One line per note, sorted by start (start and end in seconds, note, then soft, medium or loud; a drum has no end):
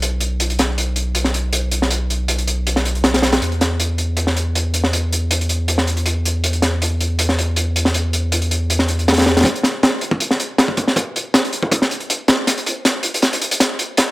0.00 3.40 B1 medium
0.00 closed hi-hat medium
0.20 closed hi-hat medium
0.40 closed hi-hat medium
0.50 closed hi-hat soft
0.59 snare medium
0.59 closed hi-hat medium
0.78 closed hi-hat medium
0.96 closed hi-hat medium
1.15 closed hi-hat medium
1.24 snare soft
1.34 closed hi-hat medium
1.53 closed hi-hat medium
1.71 closed hi-hat medium
1.82 snare soft
1.91 closed hi-hat medium
2.10 closed hi-hat medium
2.28 closed hi-hat medium
2.38 closed hi-hat soft
2.47 closed hi-hat medium
2.67 closed hi-hat medium
2.76 snare soft
2.85 closed hi-hat medium
2.95 closed hi-hat soft
3.04 snare loud
3.04 closed hi-hat medium
3.14 snare medium
3.14 closed hi-hat medium
3.22 snare loud
3.22 closed hi-hat medium
3.32 snare loud
3.32 closed hi-hat medium
3.41 9.44 E2 medium
3.41 closed hi-hat medium
3.52 closed hi-hat soft
3.61 snare medium
3.61 closed hi-hat medium
3.80 closed hi-hat medium
3.98 closed hi-hat medium
4.17 closed hi-hat medium
4.27 snare soft
4.37 closed hi-hat medium
4.55 closed hi-hat medium
4.74 closed hi-hat medium
4.84 snare soft
4.93 closed hi-hat medium
5.13 closed hi-hat medium
5.31 closed hi-hat medium
5.41 closed hi-hat soft
5.49 closed hi-hat medium
5.68 closed hi-hat medium
5.78 snare soft
5.87 closed hi-hat medium
5.97 closed hi-hat soft
6.06 closed hi-hat medium
6.25 closed hi-hat medium
6.44 closed hi-hat medium
6.53 closed hi-hat soft
6.62 snare soft
6.62 closed hi-hat medium
6.82 closed hi-hat medium
7.00 closed hi-hat medium
7.19 closed hi-hat medium
7.29 snare soft
7.39 closed hi-hat medium
7.56 closed hi-hat medium
7.76 closed hi-hat medium
7.85 snare soft
7.94 closed hi-hat medium
8.13 closed hi-hat medium
8.32 closed hi-hat medium
8.42 closed hi-hat soft
8.51 closed hi-hat medium
8.70 closed hi-hat medium
8.79 snare soft
8.88 closed hi-hat medium
8.99 closed hi-hat soft
9.08 snare medium
9.08 closed hi-hat medium
9.13 snare medium
9.13 closed hi-hat medium
9.17 snare medium
9.17 closed hi-hat medium
9.21 snare medium
9.21 closed hi-hat medium
9.26 snare loud
9.26 closed hi-hat medium
9.37 snare medium
9.37 closed hi-hat medium
9.41 snare medium
9.41 closed hi-hat medium
9.45 kick loud
9.45 closed hi-hat medium
9.56 closed hi-hat soft
9.63 snare medium
9.63 closed hi-hat medium
9.83 snare loud
9.83 closed hi-hat medium
10.01 closed hi-hat medium
10.11 kick loud
10.20 closed hi-hat medium
10.31 snare soft
10.40 closed hi-hat medium
10.58 snare loud
10.58 closed hi-hat medium
10.68 kick medium
10.77 kick medium
10.77 closed hi-hat medium
10.87 snare soft
10.96 kick loud
10.96 closed hi-hat medium
11.16 closed hi-hat medium
11.34 snare loud
11.34 closed hi-hat medium
11.45 closed hi-hat soft
11.53 closed hi-hat medium
11.63 kick medium
11.72 kick loud
11.72 closed hi-hat medium
11.82 snare soft
11.91 closed hi-hat medium
12.00 closed hi-hat soft
12.10 closed hi-hat medium
12.28 snare loud
12.28 closed hi-hat medium
12.47 snare soft
12.47 closed hi-hat medium
12.58 closed hi-hat soft
12.66 closed hi-hat medium
12.85 snare medium
12.85 closed hi-hat medium
13.03 closed hi-hat medium
13.14 closed hi-hat medium
13.22 snare medium
13.22 closed hi-hat medium
13.33 closed hi-hat medium
13.41 closed hi-hat medium
13.51 closed hi-hat medium
13.60 snare medium
13.60 closed hi-hat medium
13.79 closed hi-hat medium
13.97 snare medium
13.97 closed hi-hat medium